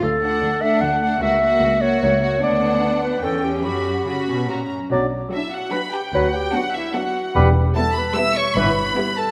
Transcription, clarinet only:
0.03 0.63 A4 medium
0.62 0.82 E5 medium
0.81 1.21 F#5 medium
1.22 1.83 E5 medium
1.81 2.02 C#5 medium
2.02 2.41 C#5 medium
2.43 3.02 D5 medium
3.03 3.25 B4 medium
3.23 3.46 A4 medium
3.44 3.64 G4 soft
3.65 4.09 G4 medium
4.08 4.50 F#4 soft
5.33 5.54 E4 soft
5.53 5.71 F#4 soft
5.72 5.81 B4 medium
5.92 6.02 G4 soft
6.13 6.33 F#4 soft
6.34 6.53 G4 medium
6.55 6.64 F#4 soft
6.75 6.95 E4 medium
6.96 7.36 F#4 soft
7.77 8.00 A4 medium
7.98 8.17 B4 medium
8.19 8.39 E5 medium
8.37 8.57 C#5 medium
8.58 9.19 B4 medium
9.18 9.31 A4 medium

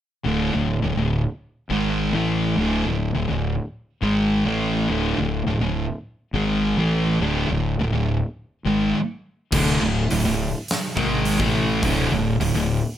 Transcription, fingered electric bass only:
0.26 0.52 D1 medium
0.54 0.81 D1 medium
0.84 0.96 D1 medium
0.97 1.24 D1 medium
1.70 2.11 G#1 medium
2.13 2.54 A1 medium
2.56 2.84 D1 medium
2.86 3.13 D1 medium
3.15 3.29 D1 medium
3.30 3.57 D1 medium
4.02 4.43 G#1 medium
4.46 4.86 A1 medium
4.89 5.16 D1 medium
5.18 5.45 D1 medium
5.47 5.60 D1 medium
5.60 5.88 D1 medium
6.34 6.74 G#1 loud
6.77 7.18 A1 medium
7.21 7.48 D1 medium
7.50 7.77 D1 medium
7.79 7.93 D1 medium
7.94 8.20 D1 medium
8.66 8.93 G#1 medium
9.53 9.79 D1 loud
9.82 10.08 D1 medium
10.11 10.24 D1 medium
10.25 10.52 D1 medium
10.97 11.37 G#1 loud
11.40 11.80 A1 medium
11.83 12.10 D1 medium
12.12 12.38 D1 medium
12.40 12.53 D1 medium
12.54 12.81 D1 medium

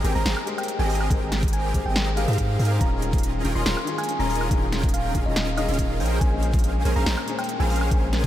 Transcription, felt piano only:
0.00 0.03 G#3 medium
0.00 0.43 G#3 medium
0.00 0.44 G4 medium
0.00 0.05 A#4 medium
0.00 0.05 C5 loud
0.00 1.10 G5 medium
0.05 0.45 A#4 medium
0.05 0.45 C5 medium
0.45 1.07 G#3 medium
0.45 1.08 G4 medium
0.45 1.08 A#4 medium
0.49 1.09 C5 loud
1.09 1.71 G#3 medium
1.09 1.72 A#4 medium
1.09 1.72 G5 medium
1.13 1.73 C5 loud
1.73 2.13 G#3 medium
1.73 2.14 G4 medium
1.73 2.15 A#4 medium
1.73 2.15 C5 medium
2.15 2.77 G#3 medium
2.15 2.78 G4 medium
2.15 2.79 A#4 medium
2.19 2.79 C5 loud
2.78 3.41 D#3 medium
2.78 3.42 C#4 medium
2.78 3.42 F4 medium
2.82 3.43 G#4 loud
3.43 3.83 D#3 medium
3.43 3.85 C#4 medium
3.43 3.85 F4 medium
3.43 3.85 G#4 medium
3.85 4.47 D#3 loud
3.85 4.48 C#4 medium
3.85 4.49 F4 medium
3.89 4.49 G#4 loud
4.49 5.11 D#3 medium
4.49 5.12 C#4 medium
4.49 5.13 F4 medium
4.53 5.13 G#4 loud
5.14 5.54 D#3 medium
5.14 5.55 C#4 medium
5.14 5.55 F4 medium
5.14 5.55 G#4 medium
5.57 5.98 D#3 medium
5.57 5.99 C#4 medium
5.57 5.99 F4 medium
5.57 5.99 G#4 loud
6.19 6.82 A#2 medium
6.19 6.82 G#3 medium
6.19 6.83 C#4 medium
6.19 6.84 C5 loud
6.84 7.24 A#2 medium
6.84 7.25 G#3 medium
6.84 7.25 C#4 medium
6.84 7.26 C5 medium
7.25 7.88 A#2 loud
7.25 7.89 G#3 medium
7.25 7.89 C#4 medium
7.25 7.90 C5 loud
7.90 8.27 A#2 medium
7.90 8.27 G#3 medium
7.90 8.27 C#4 medium
7.90 8.27 C5 loud

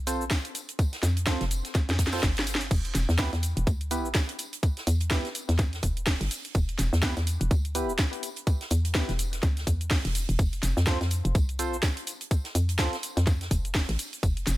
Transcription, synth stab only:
0.07 0.25 C4 medium
0.07 0.25 F4 medium
0.07 0.25 A4 medium
0.07 0.25 C5 medium
1.27 1.45 C4 medium
1.27 1.45 F4 medium
1.27 1.45 A4 medium
1.27 1.45 C5 medium
2.13 2.22 C4 loud
2.13 2.22 F4 medium
2.13 2.22 A4 medium
2.13 2.22 C5 loud
3.19 3.31 B3 medium
3.19 3.31 E4 medium
3.19 3.31 G4 medium
3.19 3.31 B4 medium
3.91 4.09 B3 medium
3.91 4.09 E4 medium
3.91 4.09 G4 medium
3.91 4.09 B4 medium
5.11 5.29 B3 medium
5.11 5.29 E4 medium
5.11 5.29 G4 medium
5.11 5.29 B4 medium
7.03 7.15 B3 medium
7.03 7.15 E4 medium
7.03 7.15 G4 medium
7.03 7.15 B4 medium
7.75 7.93 B3 medium
7.75 7.93 E4 medium
7.75 7.93 G4 medium
7.75 7.93 B4 medium
8.95 9.13 B3 medium
8.95 9.13 E4 medium
8.95 9.13 G4 medium
8.95 9.13 B4 medium
10.87 10.99 C4 medium
10.87 10.99 F4 medium
10.87 10.99 A4 medium
10.87 10.99 C5 medium
11.59 11.77 C4 medium
11.59 11.77 F4 medium
11.59 11.77 A4 medium
11.59 11.77 C5 medium
12.79 12.97 C4 medium
12.79 12.97 F4 medium
12.79 12.97 A4 medium
12.79 12.97 C5 medium

